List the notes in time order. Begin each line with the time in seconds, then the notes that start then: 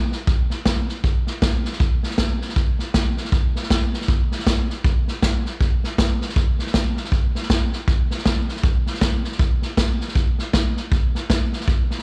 0.12 snare
0.27 kick, snare
0.50 snare
0.65 kick, snare, hi-hat pedal
0.89 snare
1.04 kick, snare
1.27 snare
1.42 kick, snare, hi-hat pedal
1.65 snare
1.72 snare
1.80 kick, snare
2.03 snare
2.10 snare
2.18 kick, snare, hi-hat pedal
2.41 snare
2.49 snare
2.56 kick, snare
2.79 snare
2.94 kick, snare, hi-hat pedal
3.17 snare
3.25 snare
3.32 kick, snare
3.56 snare
3.63 snare
3.70 kick, snare, hi-hat pedal
3.93 snare
4.01 snare
4.08 kick, snare
4.32 snare
4.39 snare
4.47 kick, snare, hi-hat pedal
4.70 snare
4.84 kick, snare
5.08 snare
5.22 kick, snare, hi-hat pedal
5.46 snare
5.61 kick, snare
5.84 snare
5.98 kick, snare, hi-hat pedal
6.21 snare
6.29 snare
6.36 kick, snare
6.59 snare
6.67 snare
6.74 kick, snare, hi-hat pedal
6.97 snare
7.04 snare
7.12 kick, snare
7.35 snare
7.42 snare
7.50 kick, snare, hi-hat pedal
7.73 snare
7.88 kick, snare
8.11 snare
8.18 snare
8.26 kick, snare, hi-hat pedal
8.48 snare
8.56 snare
8.63 kick, snare
8.86 snare
8.94 snare
9.01 kick, snare, hi-hat pedal
9.24 snare
9.32 snare
9.39 kick, snare
9.62 snare
9.77 kick, snare, hi-hat pedal
10.01 snare
10.08 snare
10.15 kick, snare
10.39 snare
10.53 kick, snare, hi-hat pedal
10.77 snare
10.92 kick, snare
11.15 snare
11.30 kick, snare, hi-hat pedal
11.53 snare
11.60 snare
11.68 kick, snare
11.91 snare
11.98 snare